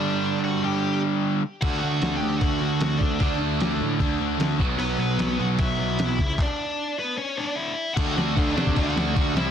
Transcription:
<<
  \new Staff \with { instrumentName = "Lead electric guitar" } { \time 4/4 \key b \minor \tempo 4 = 151 <d' d''>4 <fis' fis''>8 <g' g''>4 r4. | <fis' fis''>8 <fis' fis''>4 <g' g''>8 <fis' fis''>4. <d' d''>8~ | <d' d''>8 r2. r8 | <b b'>8 <b b'>4 <fis' fis''>8 <e' e''>2 |
<d' d''>4. <b b'>8 <cis' cis''>8 <d' d''>8 <e' e''>4 | \key d \mixolydian <fis' fis''>4 <d' d''>4 <fis' fis''>4. <e' e''>8 | }
  \new Staff \with { instrumentName = "Distorted electric guitar" } { \time 4/4 \key b \minor <g, d g>2.~ <g, d g>8 r8 | <d a d'>1 | <d a d'>2.~ <d a d'>8 <b, fis b>8~ | <b, fis b>2.~ <b, fis b>8 r8 |
r1 | \key d \mixolydian <d a d'>8 <d a d'>8 <d a d'>8 <d a d'>8 <d a d'>8 <d a d'>8 <d a d'>8 <c g c'>8 | }
  \new Staff \with { instrumentName = "Overdriven electric guitar" } { \time 4/4 \key b \minor <g, d g>4. <g, d g>2 r8 | <d a d'>2 <d a d'>2 | <d a d'>2 <d a d'>4. <b, fis b>8~ | <b, fis b>4. <b, fis b>2 r8 |
r1 | \key d \mixolydian <d a d'>8 <d a d'>8 <d a d'>8 <d a d'>8 <d a d'>8 <d a d'>8 <d a d'>8 <c g c'>8 | }
  \new Staff \with { instrumentName = "Picked electric bass" } { \clef bass \time 4/4 \key b \minor r1 | d,8 d,8 d,8 d,8 d,8 d,8 d,8 d,8 | d,8 d,8 d,8 a,8 d,8 d,8 d,8 b,,8 | b,,8 b,,8 b,,8 b,,8 b,,8 b,,8 b,,8 cis,8 |
r1 | \key d \mixolydian d,8 d,8 d,8 c8 d,8 d,8 d,8 c,8 | }
  \new DrumStaff \with { instrumentName = "Drums" } \drummode { \time 4/4 r4 r4 r4 r4 | <cymc bd>4 <cymr sn>4 <bd cymr>4 <cymr sn>8 bd8 | <bd cymr>4 <cymr sn>4 <bd cymr>4 <cymr sn>8 bd8 | cymr4 <cymr sn>4 <bd cymr>4 <cymr sn>8 bd8 |
<hc bd>4 r4 r4 r4 | <cymc bd>8 sn8 <cymc bd>8 sn16 bd16 <cymc bd>8 sn8 <cymc bd>8 sn8 | }
>>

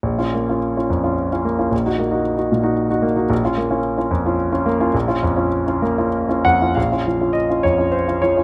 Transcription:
\new Staff \with { instrumentName = "Grand piano" } { \time 3/4 \key bes \minor \tempo 4 = 108 << { r2. | r2. | r2. | r2 r8 ges''8 |
f''4 ees''8 des''8 c''8 des''8 | } \\ { bes,,16 <des' f'>16 bes16 <des' f'>8 <des' f'>16 f,16 <des' f'>8 <des' f'>16 bes16 <des' f'>16 | bes,,16 <ees' ges'>16 bes16 <ees' ges'>8 <ees' ges'>16 bes,16 <ees' ges'>8 <ees' ges'>16 bes16 <ees' ges'>16 | bes,,16 <des' f'>16 bes16 <des' f'>8 <des' f'>16 f,16 <des' f'>8 <des' f'>16 bes16 <des' f'>16 | bes,,16 <des' f'>16 f,16 <des' f'>8 <des' f'>16 bes16 <des' f'>8 <des' f'>16 f,16 <des' f'>16 |
bes,,16 <des' f'>16 f16 <des' f'>8 <des' f'>16 f,16 <des' f'>8 <des' f'>16 f16 <des' f'>16 | } >> }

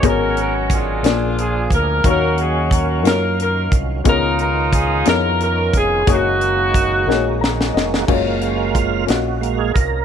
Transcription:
<<
  \new Staff \with { instrumentName = "Horn section" } { \time 6/8 \key fis \major \tempo 4. = 60 << { ais'8 ais'8 gis'4 gis'8 ais'8 | ais'8 gis'8 ais'8 ais'8 ais'8 r8 | ais'8 ais'8 gis'8 ais'8 ais'8 gis'8 | fis'2 r4 |
r2. | } \\ { <cis' fis'>4 <d' eis'>4. r8 | <cis' fis'>4. r4. | <dis' eis'>4. r4. | <ais dis'>2 r4 |
r2. | } >> }
  \new Staff \with { instrumentName = "Upright piano" } { \time 6/8 \key fis \major <b fis' gis' ais' cis''>4 r8 <ais d' eis' gis' d''>4 r8 | <ais dis' fis' cis'' eis''>4 r8 <ais dis' eis' fis' cis''>4 r8 | <b dis' eis' gis' cis''>4 r8 <b dis' e' gis' cis''>4 r8 | <ais dis' fis' gis' cis''>4 r8 <ais dis' fis' gis' cis''>4 r8 |
<ais cis' eis' fis' cis''>4 r8 <ais cis' eis' fis' dis''>4 r8 | }
  \new Staff \with { instrumentName = "Upright piano" } { \clef bass \time 6/8 \key fis \major gis,4. ais,4. | dis4. r4. | cis4. r4. | r2 ais''8 dis''8 |
r2. | }
  \new Staff \with { instrumentName = "Tonewheel organ" } { \time 6/8 \key fis \major <fis b ais' cis''>4. <eis ais d' fis' gis'>4. | <dis eis fis cis' eis''>2. | <dis b cis' eis'>2. | <dis gis ais fis'>2. |
r4 eis'8 fis'8. gis'16 ais'8 | }
  \new Staff \with { instrumentName = "Tonewheel organ" } { \time 6/8 \key fis \major r2. | r2. | r2. | r2. |
<gis ais eis''>4. r8 <gis ais eis''>8 r8 | }
  \new Staff \with { instrumentName = "Fingered electric bass" } { \clef bass \time 6/8 \key fis \major gis,,4. ais,,4 d,8 | dis,4. fis,4 bis,,8 | cis,4. eis,4 eis,,8 | fis,,4. ais,,4 eis,,8 |
fis,,4. ais,,4 bis,,8 | }
  \new DrumStaff \with { instrumentName = "Drums" } \drummode { \time 6/8 <hh bd>8 hh8 <hh bd>8 <hh sn>8 hh8 <hh bd>8 | <hh bd>8 hh8 <hh bd>8 <hh sn>8 hh8 <hh bd>8 | <hh bd>8 hh8 <hh bd>8 <hh sn>8 hh8 <hh bd>8 | <hh bd>8 hh8 <hh bd>8 sn8 sn16 sn16 sn16 sn16 |
<cymc bd>8 hh8 <hh bd>8 <hh sn>8 hh8 <hh bd>8 | }
>>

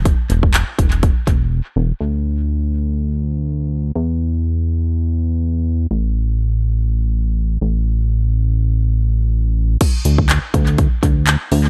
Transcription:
<<
  \new Staff \with { instrumentName = "Analog synth bass" } { \clef bass \time 4/4 \key e \mixolydian \tempo 4 = 123 e,,8 e,,4 e,,4 e,,4 e,,8 | d,1 | e,1 | a,,2.~ a,,8 a,,8~ |
a,,1 | r8 d,4 d,4 d,4 d,8 | }
  \new DrumStaff \with { instrumentName = "Drums" } \drummode { \time 4/4 <hh bd>8 hh16 bd16 <hc hh>8 <hh bd>16 hh16 <hh bd>8 <hh bd>8 r4 | r4 r4 r4 r4 | r4 r4 r4 r4 | r4 r4 r4 r4 |
r4 r4 r4 r4 | <cymc hh bd>8 hh16 bd16 <hc hh>8 <hh bd>16 hh16 <hh bd>8 <hh bd>8 <hc hh>8 hho8 | }
>>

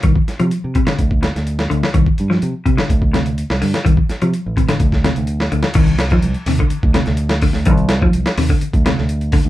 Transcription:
<<
  \new Staff \with { instrumentName = "Clean electric guitar" } { \clef bass \time 4/4 \key c \dorian \tempo 4 = 126 ees8 r16 f8 r16 c16 d8 r4 r16 d8 | ees8 r16 f8 r16 c16 d8 r16 c8 r8 d8 | ees8 r16 f8 r16 c16 d8 r16 c8 r8 d8 | ees8 r16 f8 r16 c16 d8 r16 c8 r8 d8 |
ees8 r16 f8 r16 c16 d8 r16 c8 r8 d8 | }
  \new Staff \with { instrumentName = "Fingered electric bass" } { \clef bass \time 4/4 \key c \dorian c,16 r8 c16 r16 c8. d,8. d,8. d,16 r16 | c,16 r16 g,8 c16 r16 c16 r16 d,4~ d,16 c,16 g,16 r16 | c,16 r8 c16 r16 a,,8. d,8. d,8. d,16 r16 | c,8. ees,16 c,16 r16 ees,16 r8 d,8 d,4 d,16 |
c,8. ees,16 c,16 r16 ees,16 r8 d,8 d,4 d,16 | }
  \new DrumStaff \with { instrumentName = "Drums" } \drummode { \time 4/4 <hh bd>16 bd16 <hh sn>16 hh16 hh8 <hh bd>16 <hh sn>16 <hh bd>16 bd16 <hh sn>16 <hh sn>16 hh16 sn16 hh16 sn16 | <hh bd>16 bd16 hh16 sn16 hh8 <hh bd>16 sn16 <hh bd>16 bd16 <hh sn>16 hh16 hh16 sn16 hho16 <hh sn>16 | <hh bd>16 bd16 <hh sn>16 hh16 hh8 <hh bd>16 <hh sn>16 <hh bd>16 <bd sn>16 <hh sn>16 hh16 hh16 sn16 hh16 sn16 | <cymc hh bd>16 hh16 <hh sn>16 <hh bd>16 hh16 hh16 hho16 <hh bd>16 hh16 bd16 <hh sn>16 <hh sn>16 hh16 <hh sn>16 <hho bd>16 sn16 |
<hh bd>16 hh16 <hh sn>16 bd16 hh16 <hh sn>16 hho16 bd16 hh16 <hh bd>16 <hh sn>16 sn16 hh16 hh16 <hho bd>16 hh16 | }
>>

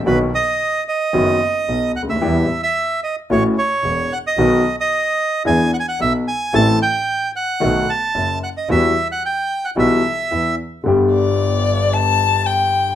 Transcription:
<<
  \new Staff \with { instrumentName = "Violin" } { \time 4/4 \key e \minor \tempo 4 = 111 r1 | r1 | r1 | r1 |
r1 | \key g \major r8 d''4. a''4 g''4 | }
  \new Staff \with { instrumentName = "Bandoneon" } { \time 4/4 \key e \minor b'8 dis''4 dis''2 fis''16 e''16~ | e''8. e''8. dis''8 cis''8 cis''4 fis''16 dis''16~ | dis''8. dis''4~ dis''16 gis''8 fis''32 gis''32 fis''16 e''8 gis''8 | a''8 g''4 fis''4 a''4 fis''16 dis''16 |
e''8. fis''16 g''8. fis''16 e''4. r8 | \key g \major r1 | }
  \new Staff \with { instrumentName = "Grand piano" } { \clef bass \time 4/4 \key e \minor <b,, b, dis fis b fis'>8 r4. <fis,, fis, dis fis b fis'>8 r8 <b,, b,>8 r32 cis,32 d,32 dis,32 | <e, e g b g'>8 r4. <a,, a, e a cis' fis'>8 r8 <e,, e,>8 r8 | <b,, b, dis fis b fis'>8 r4. <e, e b d' gis'>8 r8 <b,, b,>8 r8 | <a,, a, e a c' a'>8 r4. <b,, b, dis a b fis'>8 r8 <fis,, fis,>8 r8 |
<e, e g b fis'>8 r4. <b,, b, e g b fis'>8 r8 <e, e>8 r8 | \key g \major <g,, g, d g b g'>1 | }
  \new Staff \with { instrumentName = "Double bass" } { \clef bass \time 4/4 \key e \minor b,,8 r4. fis,,8 r8 b,,8 d,8 | e,8 r4. a,,8 r8 e,,8 r8 | b,,8 r4. e,8 r8 b,,8 r8 | a,,8 r4. b,,8 r8 fis,,8 r8 |
e,8 r4. b,,8 r8 e,8 r8 | \key g \major g,,1 | }
>>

